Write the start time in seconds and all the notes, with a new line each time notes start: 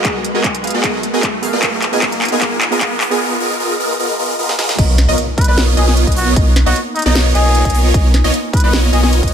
Already playing: G#3 F#4 A#4 B4, riser
0.03 B3 F#4 G#4 A#4 D#5 F#5, kick, clap, closed hi-hat
0.24 closed hi-hat
0.34 B3 F#4 G#4 A#4 D#5 G#5
0.44 kick, clap, closed hi-hat
0.55 closed hi-hat
0.63 B3 G#4 A#4 F5, closed hi-hat
0.67 closed hi-hat
0.70 B3 F#4 G#4 A#4 D#5, closed hi-hat
0.83 B3 F#4 G#4 A#4 D#5 F#5, kick, clap, closed hi-hat
1.03 closed hi-hat
1.13 B3 F#4 G#4 A#4 D#5 G#5
1.23 kick, clap, closed hi-hat
1.42 B3 G#4 A#4 F5, open hi-hat
1.53 G#2 B3 F#4 G#4 A#4 D#5
1.62 C#2 C#3 B3 D#4 F4 G#4 A#4 F5, kick, clap, closed hi-hat
1.82 clap, closed hi-hat
1.92 B3 F4 G#4 A#4 D#5 G#5
2.02 B3 G#4 A#4 D#5 F5, kick, clap, closed hi-hat
2.12 closed hi-hat
2.22 clap, closed hi-hat
2.25 closed hi-hat
2.28 B3 F4 G#4 A#4 D#5, closed hi-hat
2.33 A#4 G#5
2.41 B3 F4 G#4 A#4 D#5 F5, kick, clap, closed hi-hat
2.61 clap, closed hi-hat
2.71 B3 F4 G#4 A#4 D#5 G#5
2.80 B3 G#4 F5, kick, clap, closed hi-hat
3.01 clap, open hi-hat
3.10 B3 F4 G#4 A#4 D#5 G#5
3.20 B3 F4 G#4 A#4 D#5
3.40 B3 F4 G#4 A#4 D#5
3.60 B3 F4 G#4 A#4 D#5
3.80 B3 F4 G#4 A#4 D#5
4.00 B3 F4 G#4 A#4 D#5
4.19 B3 F4 G#4 A#4 D#5
4.39 B3 F4 G#4 A#4 D#5
4.49 snare
4.59 B3 F4 G#4 A#4 D#5, snare
4.69 snare
4.78 B1 A#3 B3 D#4 F4 D#5, kick, closed hi-hat, crash, impact
4.98 snare, closed hi-hat
5.08 B1 B3 F4 A#4 C#5 D#5
5.18 closed hi-hat
5.38 B4, kick, closed hi-hat
5.41 closed hi-hat
5.44 B1 B3 F4 A#4 B4 C#5 D#5, closed hi-hat
5.57 snare, closed hi-hat
5.77 B1 B3 F4 G#4 A#4 C#5 D#5, closed hi-hat
5.87 G#4, snare
5.97 closed hi-hat
6.07 B1 B3 F4 A#4 D#5, kick, closed hi-hat
6.12 closed hi-hat
6.16 F#4, open hi-hat
6.36 B1 B3 F4 A#4 C#5 D#5, kick, closed hi-hat
6.56 snare, closed hi-hat
6.66 B1 B3 F4 F#4 A#4 C#5 D#5
6.76 closed hi-hat
6.96 D#4, closed hi-hat
6.99 closed hi-hat
7.02 B1 B3 D#4 F4 A#4 C#5 D#5, snare, closed hi-hat
7.15 snare, closed hi-hat
7.35 B1 B3 F4 G#4 A#4 C#5 D#5, closed hi-hat
7.55 closed hi-hat
7.65 B1 D#5, kick, closed hi-hat
7.70 closed hi-hat
7.75 open hi-hat
7.94 B1 B3 F4 A#4 C#5 D#5, kick, closed hi-hat
8.14 snare, closed hi-hat
8.24 B1 B3 F4 A#4 C#5 D#5
8.34 closed hi-hat
8.53 B4, kick, closed hi-hat
8.57 closed hi-hat
8.60 B1 B3 F4 A#4 B4 C#5 D#5, closed hi-hat
8.73 snare, closed hi-hat
8.93 B1 B3 F4 G#4 A#4 C#5 D#5, closed hi-hat
9.03 G#4, snare
9.13 closed hi-hat
9.23 B1 B3 F4 A#4 D#5, kick, closed hi-hat
9.28 closed hi-hat